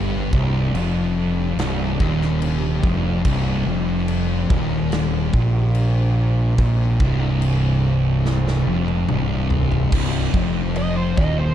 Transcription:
Already playing: G1 G2 C3 G3 D4
0.32 C1 C2, kick
0.74 F1 F2, crash
1.57 C1 C2, snare, crash
2.00 D#1 D#2, kick
2.22 snare
2.42 crash
2.83 F1 F2, kick
3.25 C1 C2, kick, crash
3.66 F1 F2
4.08 crash
4.50 D#1 D#2, kick
4.92 snare, crash
5.33 A#1 A#2, kick
5.75 crash
6.58 A#1 A#2, kick, crash
7.00 C1 C2, kick
7.42 crash
8.26 snare
8.48 snare
8.67 F1 F2
8.88 high tom
9.09 C1 C2, mid tom
9.50 floor tom
9.72 floor tom
9.92 C1 C2 C3 D3 G3, kick, crash
10.34 F1 F2, kick
10.76 D#5, crash
10.97 C5
11.17 D#1 D#2 D#5, kick
11.38 C5

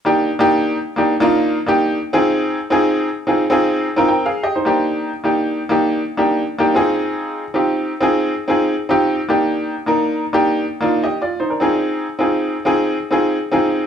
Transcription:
0.05 A#3 D4 D#4 G4
0.39 A#3 D4 D#4 G4
0.96 A#3 D4 D#4 G4
1.20 A#3 D4 D#4 F4
1.66 A#3 D4 D#4 G4
2.13 C4 D#4 F4 G#4
2.70 C4 D#4 F4 G#4
3.27 C4 D#4 F4 G#4
3.50 C4 D#4 F4 G#4
3.96 C4 D#4 F4 A#4
4.08 A#4 G5
4.26 G#4 F5
4.43 G4 D#5
4.56 D#4 C5
4.65 A#3 D4 D#4 G4
5.24 A#3 D4 D#4 G4
5.69 A#3 D4 D#4 G4
6.17 A#3 D4 D#4 G4
6.58 A#3 D4 D#4 G4
6.74 C4 D#4 F4 G#4
7.54 C4 D#4 F4 G4
8.00 C4 D#4 F4 G#4
8.48 C4 D#4 F4 G#4
8.89 C4 D#4 F4 G4
9.28 A#3 D4 D#4 G4
9.86 A#3 D4 D#4 A#4
10.33 A#3 D4 D#4 G4
10.81 A#3 D4 D#4 F4
11.04 G4 D#5
11.22 F4 D5
11.40 D#4 C5
11.50 D4 A#4
11.60 C4 D#4 F4 G#4
12.19 C4 D#4 F4 G#4
12.65 C4 D#4 F4 G#4
13.11 C4 D#4 F4 G#4
13.52 C4 D#4 F4 G#4

